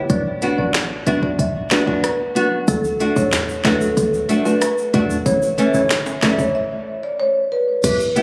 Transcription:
0.10 B1 F#3 B3 D4 D5, kick, closed hi-hat
0.42 B3 D4 F#4, closed hi-hat
0.58 A1 F#3 B3 D4 D5
0.74 finger snap, snare, closed hi-hat
1.06 B1 F#3 B3 D4 F#4 E5, closed hi-hat
1.23 D5, kick
1.39 B1 E5, kick, closed hi-hat
1.71 F#3 B3 D4 F#4, finger snap, snare, closed hi-hat
1.87 B3 D4 F#4 D5, kick
2.04 B4, cross-stick, closed hi-hat
2.35 F#3 B3 D4 F#4, closed hi-hat
2.68 D2 F#3 A3 D4 A4, kick, closed hi-hat, shaker
2.84 shaker
3.00 A3 D4 F#4, closed hi-hat
3.16 E2 F#3 A3 D4 C#5, kick, shaker
3.33 finger snap, snare, closed hi-hat, shaker
3.49 shaker
3.64 D2 F#3 A3 D4 F#4 B4, finger snap, snare, closed hi-hat
3.81 A4, shaker
3.97 D2 A4, kick, closed hi-hat, shaker
4.14 shaker
4.29 F#3 A3 D4 F#4, closed hi-hat, shaker
4.45 A3 D4 F#4 B4, shaker
4.61 B4, cross-stick, closed hi-hat, shaker
4.78 shaker
4.93 E2 F#3 A3 D4 F#4, kick, closed hi-hat
5.10 shaker
5.26 A1 E3 A3 C#4 C#5, kick, closed hi-hat, shaker
5.42 shaker
5.58 E3 A3 C#4, closed hi-hat, shaker
5.74 G1 E3 A3 C#4 C#5, shaker
5.90 finger snap, snare, closed hi-hat, shaker
6.06 high timbale, shaker
6.22 A1 E3 A3 C#4 D5, finger snap, snare, closed hi-hat, shaker
6.39 C#5, kick, shaker
6.55 E5
7.03 D5
7.20 C#5
7.52 B4
7.84 E1 G3 B3 E4 B4, kick, closed hi-hat, crash, shaker
8.00 shaker
8.16 B3 E4 G4, closed hi-hat

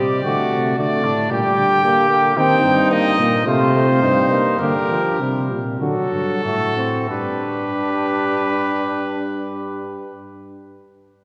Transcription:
Already playing: G3 G4 D5
0.00 C3
0.24 D3 A3 F#4
0.52 C3
0.77 D3 A3 D5
1.04 A2 D4
1.30 A#2 G3 G4 G5
1.57 D3
1.84 A#3 G4
2.10 A#3
2.37 D#3 C4 D#4 G5
2.64 G2
2.92 A#3 D#5
3.19 A#2 A#3
3.46 C3 A3 F4 C5
3.74 A3
4.02 G2 C4 D#4
4.31 A#3
4.59 D3 A#3 G4 A#4
4.90 F3
5.20 C3 G3
5.51 A#2
5.80 D3 F#3 F#4 A4
6.12 G2
6.44 A2 A3 F#4
6.77 C4
7.10 G2 D4 G4 B4

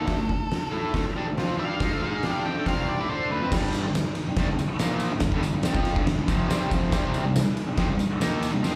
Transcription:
Already playing: A4
0.06 D3 A3, kick, snare, open hi-hat
0.17 D3 A3
0.29 muted distorted electric guitar stroke, kick
0.51 snare, open hi-hat
0.71 A3 E4 A4
0.92 D3 A3, kick, snare, open hi-hat
1.06 muted distorted electric guitar stroke
1.16 G3 D4
1.26 D3 A3
1.37 F3 C4 F4, snare, open hi-hat
1.58 G3 D4 G4 F5
1.80 G#3 D#4, kick, snare, open hi-hat
1.92 D3 A3
2.02 G#3 D#4 G#4
2.23 G3 D4 G4, snare, open hi-hat
2.45 F3 C4 G5
2.57 D3 A3
2.66 C3 G3 C4 F5, kick, snare, open hi-hat
2.89 D5
3.00 A3 E4
3.09 D4 A4 C5 D5
3.30 D3 A3 B4
3.41 F3 C4
3.52 G2 D3 G3, kick, snare, crash, tambourine
3.73 ride, tambourine
3.86 G2 D3
3.95 snare, ride, tambourine
4.15 ride, tambourine
4.28 muted distorted electric guitar stroke
4.36 C3 G3, kick, snare, ride, tambourine
4.48 G2 D3
4.59 muted distorted electric guitar stroke, ride, tambourine
4.79 A#2 F3 A#3, snare, ride, tambourine
5.00 ride, tambourine
5.13 G2 D3
5.20 kick, snare, ride, tambourine
5.32 G2 D3, kick
5.43 G2 D3, ride, tambourine
5.53 G2 D3
5.63 C3 G3, snare, ride, tambourine
5.74 F3 C4 F4, kick
5.85 ride, tambourine
5.96 G2 D3, kick
6.07 G2 D3, snare, ride, tambourine
6.18 G2 D3
6.27 F2 C3 F3, kick, ride, tambourine
6.48 C3 G3 C4, snare, ride, tambourine
6.71 F2 C3 F3, kick, ride, tambourine
6.92 C3 G3 C4, kick, snare, ride, tambourine
7.14 ride, tambourine
7.24 C3 G3
7.36 snare, ride, tambourine
7.57 ride, tambourine
7.68 muted distorted electric guitar stroke
7.77 F3 C4, kick, snare, ride, tambourine
7.90 C3 G3
7.99 muted distorted electric guitar stroke, ride, tambourine
8.21 D#3 A#3 D#4, snare, ride, tambourine
8.43 ride, tambourine
8.52 C3 G3
8.63 F3 C4, snare, tambourine

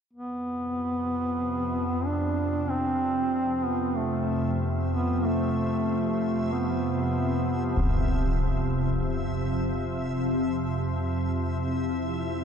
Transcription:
0.12 F2 C3 B3 E5
2.06 D4
2.70 C4
3.65 B3
3.96 A3
4.92 B3
5.25 A3
6.52 B3
7.77 concert bass drum
11.29 E4

